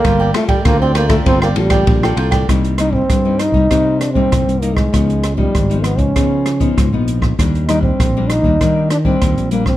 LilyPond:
<<
  \new Staff \with { instrumentName = "Cavaquinho" } { \time 4/4 \key g \minor \tempo 4 = 98 <f' bes' d'' g''>16 <bes' d'' g''>16 r16 <bes' d'' g''>16 <f' bes' d'' g''>16 <bes' d'' g''>16 <f' bes' d'' g''>8 <f' bes' d'' g''>16 <bes' d'' g''>16 r16 <bes' d'' g''>8 <bes' d'' g''>16 <f' bes' d'' g''>16 <bes' d'' g''>16 | \key c \dorian r1 | r1 | r1 | }
  \new Staff \with { instrumentName = "Trombone" } { \time 4/4 \key g \minor bes8 a16 g16 bes16 c'16 bes16 a16 c'16 bes16 g4 r8 | \key c \dorian r8 ees'16 c'8. ees'4 d'16 c'8. bes16 aes16~ | aes8. g8. ces'16 des'4. r8. | r8 ees'16 c'8. ees'4 d'16 c'8. bes16 c'16 | }
  \new Staff \with { instrumentName = "Nylon-string guitar" } { \time 4/4 \key g \minor << { r8 <bes f' a'>16 r16 <bes f' a'>8 r16 <bes f' a'>16 <bes f' a'>8 <bes f' a'>8 r16 <bes f' a'>8. | \key c \dorian <g bes ees'>8 <g bes ees'>8 r16 <g bes ees'>8 <g bes ees'>16 <g bes ees'>8 r16 <g bes ees'>8. <g bes ees'>8 | <f ces' ees'>8 r16 <f ces' ees'>8 <f ces' ees'>8. <f ces' ees'>8. <f ces' ees'>8 <f ces' ees'>8. | <g bes d'>8 <g bes d'>8. <g bes d'>8 <g bes d'>16 <g bes d'>8 r16 <g bes d'>8. <g bes d'>16 r16 | } \\ { g4 d4 g4 d4 | c4 g,4 c4 g,4 | des4 aes,4 des4 aes,4 | ees4 bes,4 ees4 bes,4 | } >> }
  \new Staff \with { instrumentName = "Fingered electric bass" } { \clef bass \time 4/4 \key g \minor g,,8 r8 d,4 g,,8 a,,8 bes,,8 c,8 | \key c \dorian c,4 g,8. c,16 c4 c,16 c,8. | des,4 aes,,8. des,16 des4 des,16 bes,,8. | ees,4 bes,,8. ees,16 ees4 ees,16 bes,,8. | }
  \new DrumStaff \with { instrumentName = "Drums" } \drummode { \time 4/4 <bd cymr ss>8 <cymr ss>16 <bd cymr>16 <bd cymr ss>8 <cymr ss>16 <bd cymr ss>16 <bd cymr>16 ss16 cymr16 <bd cymr ss>16 <bd cymr>16 ss16 cymr16 <bd cymr ss>16 | <hh bd ss>16 hh16 <hh ss>16 bd16 <hh bd ss>8 <hh ss>16 bd16 <hh bd ss>8 <hh ss>16 bd16 <hh bd ss>16 hh16 hh16 <bd ss>16 | <hh bd ss>16 hh16 <hh ss>16 bd16 <hh bd ss>16 hh16 <hh ss>16 <hh bd>16 <hh bd ss>8 <hh ss>16 <hh bd>16 <hh bd ss>8 hh16 <bd ss>16 | <hh bd ss>16 hh16 <hh ss>16 bd16 <hh bd ss>8 <hh ss>16 bd16 <hh bd ss>8 <hh ss>16 bd16 <hh bd ss>16 hh16 hh16 <bd ss>16 | }
>>